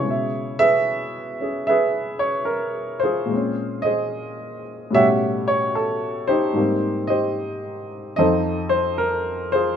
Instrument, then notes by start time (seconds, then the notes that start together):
grand piano
Already playing: E4 G#4 C#5
0.00 C#3 G#3
0.07 B2 E5
0.59 G#4 B4 E5
1.41 C#4 G#4
1.67 G#4 B4 E5
2.19 C#5
2.45 A#4
3.00 C5
3.04 F4 G#4
3.26 A#2 G#3
3.33 C4 C#4
3.82 G#4 C5 D#5
4.91 A2 B2 G3 C#4 E5
4.95 G4 C#5 F#5
5.48 C#5
5.75 A4
6.27 D#4 G4 C5
6.53 G#2 G3 A#3
6.59 C4
7.07 G4 C5 D#5
8.16 F2 F3 C4 D#4 A4 C5 D#5
8.69 C5
8.98 A#4
9.52 F4 G#4 C5